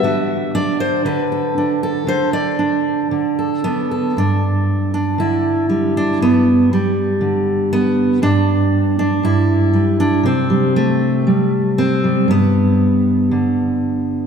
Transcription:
0, 0, Header, 1, 2, 480
1, 0, Start_track
1, 0, Key_signature, 1, "major"
1, 0, Tempo, 508906
1, 44, Time_signature, 4, 2, 24, 8
1, 2444, Tempo, 519481
1, 4844, Tempo, 505051
1, 9644, Tempo, 512383
1, 13418, End_track
2, 0, Start_track
2, 0, Title_t, "Steel-string acoustic guitar"
2, 0, Program_c, 0, 25
2, 0, Note_on_c, 0, 76, 111
2, 31, Note_on_c, 0, 50, 70
2, 39, Note_on_c, 0, 66, 47
2, 516, Note_on_c, 0, 62, 66
2, 517, Note_on_c, 0, 74, 96
2, 754, Note_off_c, 0, 74, 0
2, 758, Note_on_c, 0, 72, 90
2, 988, Note_off_c, 0, 50, 0
2, 991, Note_on_c, 0, 50, 65
2, 994, Note_off_c, 0, 72, 0
2, 998, Note_on_c, 0, 71, 76
2, 999, Note_off_c, 0, 76, 0
2, 1245, Note_on_c, 0, 69, 46
2, 1484, Note_off_c, 0, 62, 0
2, 1488, Note_on_c, 0, 62, 61
2, 1716, Note_off_c, 0, 69, 0
2, 1727, Note_on_c, 0, 69, 76
2, 1932, Note_off_c, 0, 66, 0
2, 1941, Note_off_c, 0, 50, 0
2, 1952, Note_on_c, 0, 50, 69
2, 1962, Note_off_c, 0, 71, 0
2, 1966, Note_on_c, 0, 72, 92
2, 1994, Note_off_c, 0, 62, 0
2, 2196, Note_off_c, 0, 72, 0
2, 2199, Note_on_c, 0, 74, 95
2, 2442, Note_on_c, 0, 62, 62
2, 2447, Note_off_c, 0, 69, 0
2, 2916, Note_off_c, 0, 50, 0
2, 2926, Note_on_c, 0, 50, 62
2, 3179, Note_on_c, 0, 69, 44
2, 3406, Note_off_c, 0, 62, 0
2, 3414, Note_on_c, 0, 59, 78
2, 3420, Note_on_c, 0, 62, 55
2, 3649, Note_off_c, 0, 74, 0
2, 3655, Note_off_c, 0, 69, 0
2, 3666, Note_on_c, 0, 69, 45
2, 3869, Note_off_c, 0, 62, 0
2, 3894, Note_off_c, 0, 50, 0
2, 3896, Note_off_c, 0, 59, 0
2, 3899, Note_off_c, 0, 69, 0
2, 3900, Note_on_c, 0, 43, 57
2, 3914, Note_on_c, 0, 62, 71
2, 4603, Note_off_c, 0, 62, 0
2, 4614, Note_on_c, 0, 62, 69
2, 4838, Note_on_c, 0, 50, 59
2, 4852, Note_on_c, 0, 64, 70
2, 5321, Note_off_c, 0, 62, 0
2, 5325, Note_on_c, 0, 55, 40
2, 5584, Note_off_c, 0, 55, 0
2, 5588, Note_on_c, 0, 62, 79
2, 5804, Note_off_c, 0, 43, 0
2, 5808, Note_on_c, 0, 43, 58
2, 5811, Note_off_c, 0, 50, 0
2, 5822, Note_off_c, 0, 62, 0
2, 5828, Note_on_c, 0, 59, 75
2, 6060, Note_off_c, 0, 64, 0
2, 6304, Note_off_c, 0, 59, 0
2, 6308, Note_on_c, 0, 55, 67
2, 6763, Note_on_c, 0, 50, 54
2, 7252, Note_off_c, 0, 55, 0
2, 7256, Note_on_c, 0, 59, 84
2, 7714, Note_off_c, 0, 43, 0
2, 7725, Note_off_c, 0, 50, 0
2, 7725, Note_on_c, 0, 43, 69
2, 7728, Note_off_c, 0, 59, 0
2, 7732, Note_on_c, 0, 62, 87
2, 8446, Note_off_c, 0, 62, 0
2, 8457, Note_on_c, 0, 62, 74
2, 8676, Note_off_c, 0, 43, 0
2, 8688, Note_on_c, 0, 43, 61
2, 8700, Note_on_c, 0, 64, 74
2, 9161, Note_off_c, 0, 62, 0
2, 9165, Note_on_c, 0, 55, 43
2, 9412, Note_off_c, 0, 55, 0
2, 9416, Note_on_c, 0, 62, 84
2, 9635, Note_off_c, 0, 43, 0
2, 9639, Note_on_c, 0, 48, 63
2, 9650, Note_off_c, 0, 62, 0
2, 9652, Note_off_c, 0, 64, 0
2, 9659, Note_on_c, 0, 60, 76
2, 9887, Note_on_c, 0, 55, 55
2, 10131, Note_off_c, 0, 55, 0
2, 10135, Note_on_c, 0, 57, 70
2, 10607, Note_off_c, 0, 60, 0
2, 10608, Note_on_c, 0, 55, 54
2, 11090, Note_on_c, 0, 60, 77
2, 11328, Note_off_c, 0, 57, 0
2, 11331, Note_off_c, 0, 55, 0
2, 11331, Note_on_c, 0, 55, 49
2, 11531, Note_off_c, 0, 48, 0
2, 11555, Note_on_c, 0, 43, 63
2, 11568, Note_off_c, 0, 60, 0
2, 11577, Note_off_c, 0, 55, 0
2, 11580, Note_on_c, 0, 59, 77
2, 12525, Note_on_c, 0, 50, 56
2, 13418, Note_off_c, 0, 43, 0
2, 13418, Note_off_c, 0, 50, 0
2, 13418, Note_off_c, 0, 59, 0
2, 13418, End_track
0, 0, End_of_file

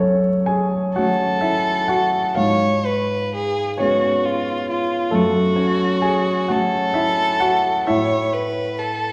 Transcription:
0, 0, Header, 1, 3, 480
1, 0, Start_track
1, 0, Key_signature, 3, "minor"
1, 0, Tempo, 949367
1, 1196, Time_signature, 6, 3, 24, 8
1, 1680, Tempo, 909091
1, 4744, End_track
2, 0, Start_track
2, 0, Title_t, "Violin"
2, 0, Program_c, 0, 40
2, 482, Note_on_c, 0, 69, 71
2, 1178, Note_off_c, 0, 69, 0
2, 1198, Note_on_c, 0, 73, 67
2, 1444, Note_on_c, 0, 71, 58
2, 1452, Note_off_c, 0, 73, 0
2, 1682, Note_off_c, 0, 71, 0
2, 1694, Note_on_c, 0, 68, 61
2, 1925, Note_off_c, 0, 68, 0
2, 1933, Note_on_c, 0, 66, 56
2, 2171, Note_on_c, 0, 65, 59
2, 2178, Note_off_c, 0, 66, 0
2, 2404, Note_off_c, 0, 65, 0
2, 2409, Note_on_c, 0, 65, 55
2, 2642, Note_on_c, 0, 66, 68
2, 2650, Note_off_c, 0, 65, 0
2, 3361, Note_on_c, 0, 69, 71
2, 3369, Note_off_c, 0, 66, 0
2, 4079, Note_off_c, 0, 69, 0
2, 4082, Note_on_c, 0, 73, 62
2, 4326, Note_on_c, 0, 71, 60
2, 4333, Note_off_c, 0, 73, 0
2, 4562, Note_on_c, 0, 69, 58
2, 4570, Note_off_c, 0, 71, 0
2, 4744, Note_off_c, 0, 69, 0
2, 4744, End_track
3, 0, Start_track
3, 0, Title_t, "Grand piano"
3, 0, Program_c, 1, 0
3, 0, Control_c, 1, 64, 127
3, 0, Note_on_c, 1, 42, 44
3, 0, Note_on_c, 1, 57, 54
3, 0, Note_on_c, 1, 61, 57
3, 0, Note_on_c, 1, 69, 71
3, 0, Note_on_c, 1, 73, 69
3, 220, Note_off_c, 1, 61, 0
3, 233, Note_on_c, 1, 80, 78
3, 237, Note_off_c, 1, 73, 0
3, 243, Note_on_c, 1, 68, 58
3, 458, Note_off_c, 1, 42, 0
3, 462, Note_off_c, 1, 68, 0
3, 474, Note_off_c, 1, 80, 0
3, 485, Note_on_c, 1, 78, 65
3, 486, Note_on_c, 1, 66, 53
3, 494, Note_off_c, 1, 57, 0
3, 494, Note_on_c, 1, 57, 39
3, 494, Note_on_c, 1, 61, 43
3, 703, Note_off_c, 1, 66, 0
3, 712, Note_on_c, 1, 76, 68
3, 719, Note_off_c, 1, 78, 0
3, 722, Note_on_c, 1, 64, 51
3, 942, Note_off_c, 1, 64, 0
3, 951, Note_on_c, 1, 78, 73
3, 954, Note_off_c, 1, 76, 0
3, 956, Note_on_c, 1, 66, 59
3, 1180, Note_off_c, 1, 66, 0
3, 1184, Note_off_c, 1, 57, 0
3, 1184, Note_off_c, 1, 61, 0
3, 1187, Note_on_c, 1, 77, 67
3, 1194, Note_off_c, 1, 78, 0
3, 1195, Note_on_c, 1, 65, 58
3, 1198, Note_on_c, 1, 44, 50
3, 1206, Control_c, 1, 64, 0
3, 1209, Note_off_c, 1, 69, 0
3, 1295, Control_c, 1, 64, 127
3, 1901, Note_off_c, 1, 65, 0
3, 1903, Note_off_c, 1, 44, 0
3, 1918, Note_off_c, 1, 77, 0
3, 1919, Note_on_c, 1, 73, 69
3, 1931, Note_on_c, 1, 56, 40
3, 1931, Note_on_c, 1, 61, 55
3, 1935, Note_on_c, 1, 59, 41
3, 2621, Note_off_c, 1, 56, 0
3, 2621, Note_off_c, 1, 61, 0
3, 2623, Note_off_c, 1, 59, 0
3, 2623, Note_on_c, 1, 69, 65
3, 2629, Note_on_c, 1, 57, 52
3, 2633, Note_on_c, 1, 42, 45
3, 2636, Note_off_c, 1, 73, 0
3, 2646, Control_c, 1, 64, 0
3, 2743, Control_c, 1, 64, 127
3, 2855, Note_off_c, 1, 57, 0
3, 2861, Note_on_c, 1, 73, 68
3, 2869, Note_off_c, 1, 69, 0
3, 2869, Note_on_c, 1, 61, 53
3, 3094, Note_off_c, 1, 61, 0
3, 3102, Note_on_c, 1, 80, 73
3, 3106, Note_off_c, 1, 73, 0
3, 3108, Note_on_c, 1, 68, 60
3, 3329, Note_off_c, 1, 42, 0
3, 3333, Note_off_c, 1, 68, 0
3, 3347, Note_off_c, 1, 80, 0
3, 3349, Note_on_c, 1, 78, 63
3, 3355, Note_on_c, 1, 66, 52
3, 3356, Note_on_c, 1, 57, 39
3, 3360, Note_on_c, 1, 61, 42
3, 3580, Note_off_c, 1, 66, 0
3, 3589, Note_on_c, 1, 76, 71
3, 3594, Note_off_c, 1, 78, 0
3, 3596, Note_on_c, 1, 64, 52
3, 3822, Note_off_c, 1, 64, 0
3, 3833, Note_on_c, 1, 78, 76
3, 3835, Note_off_c, 1, 76, 0
3, 3840, Note_on_c, 1, 66, 52
3, 4060, Note_off_c, 1, 57, 0
3, 4062, Note_off_c, 1, 61, 0
3, 4064, Note_off_c, 1, 66, 0
3, 4077, Note_off_c, 1, 78, 0
3, 4081, Note_on_c, 1, 76, 80
3, 4083, Note_on_c, 1, 64, 55
3, 4089, Control_c, 1, 64, 0
3, 4092, Note_on_c, 1, 45, 47
3, 4163, Control_c, 1, 64, 127
3, 4744, Note_off_c, 1, 45, 0
3, 4744, Note_off_c, 1, 64, 0
3, 4744, Note_off_c, 1, 76, 0
3, 4744, End_track
0, 0, End_of_file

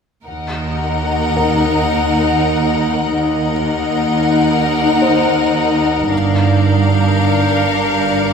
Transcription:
0, 0, Header, 1, 8, 480
1, 0, Start_track
1, 0, Tempo, 729927
1, 178, Time_signature, 4, 2, 24, 8
1, 5478, End_track
2, 0, Start_track
2, 0, Title_t, "Violin section"
2, 0, Program_c, 0, 48
2, 4021, Note_on_c, 0, 91, 24
2, 4495, Note_on_c, 0, 97, 25
2, 5478, Note_off_c, 0, 91, 0
2, 5478, Note_off_c, 0, 97, 0
2, 5478, End_track
3, 0, Start_track
3, 0, Title_t, "Violin section"
3, 0, Program_c, 1, 48
3, 177, Note_on_c, 1, 78, 34
3, 2073, Note_off_c, 1, 78, 0
3, 2099, Note_on_c, 1, 78, 37
3, 3998, Note_off_c, 1, 78, 0
3, 4025, Note_on_c, 1, 77, 42
3, 5478, Note_off_c, 1, 77, 0
3, 5478, End_track
4, 0, Start_track
4, 0, Title_t, "Felt piano"
4, 0, Program_c, 2, 0
4, 297, Control_c, 2, 64, 127
4, 897, Note_on_c, 2, 82, 27
4, 898, Note_on_c, 2, 70, 17
4, 2313, Note_off_c, 2, 70, 0
4, 2313, Note_off_c, 2, 82, 0
4, 3301, Note_on_c, 2, 72, 33
4, 4036, Control_c, 2, 64, 0
4, 4164, Control_c, 2, 64, 127
4, 4715, Note_off_c, 2, 72, 0
4, 5478, End_track
5, 0, Start_track
5, 0, Title_t, "Ambient pad"
5, 0, Program_c, 3, 92
5, 169, Note_on_c, 3, 78, 38
5, 172, Note_on_c, 3, 63, 41
5, 175, Note_on_c, 3, 70, 40
5, 2069, Note_off_c, 3, 78, 0
5, 2071, Note_off_c, 3, 63, 0
5, 2072, Note_off_c, 3, 70, 0
5, 2098, Note_on_c, 3, 78, 41
5, 2101, Note_on_c, 3, 70, 43
5, 2102, Note_on_c, 3, 63, 42
5, 3998, Note_off_c, 3, 78, 0
5, 3999, Note_off_c, 3, 63, 0
5, 3999, Note_off_c, 3, 70, 0
5, 4022, Note_on_c, 3, 70, 37
5, 4027, Note_on_c, 3, 62, 44
5, 4027, Note_on_c, 3, 77, 44
5, 5478, Note_off_c, 3, 62, 0
5, 5478, Note_off_c, 3, 70, 0
5, 5478, Note_off_c, 3, 77, 0
5, 5478, End_track
6, 0, Start_track
6, 0, Title_t, "Violin section"
6, 0, Program_c, 4, 48
6, 171, Note_on_c, 4, 70, 31
6, 173, Note_on_c, 4, 63, 35
6, 2070, Note_off_c, 4, 70, 0
6, 2071, Note_off_c, 4, 63, 0
6, 2095, Note_on_c, 4, 63, 36
6, 2095, Note_on_c, 4, 70, 37
6, 3996, Note_off_c, 4, 63, 0
6, 3996, Note_off_c, 4, 70, 0
6, 4020, Note_on_c, 4, 62, 38
6, 4021, Note_on_c, 4, 70, 39
6, 5478, Note_off_c, 4, 62, 0
6, 5478, Note_off_c, 4, 70, 0
6, 5478, End_track
7, 0, Start_track
7, 0, Title_t, "Cello section"
7, 0, Program_c, 5, 48
7, 178, Note_on_c, 5, 39, 28
7, 2074, Note_off_c, 5, 39, 0
7, 2092, Note_on_c, 5, 39, 28
7, 3995, Note_off_c, 5, 39, 0
7, 4024, Note_on_c, 5, 43, 35
7, 5478, Note_off_c, 5, 43, 0
7, 5478, End_track
8, 0, Start_track
8, 0, Title_t, "Double bass section"
8, 0, Program_c, 6, 48
8, 178, Note_on_c, 6, 39, 34
8, 2074, Note_off_c, 6, 39, 0
8, 2097, Note_on_c, 6, 39, 31
8, 3997, Note_off_c, 6, 39, 0
8, 4024, Note_on_c, 6, 31, 36
8, 5478, Note_off_c, 6, 31, 0
8, 5478, End_track
0, 0, End_of_file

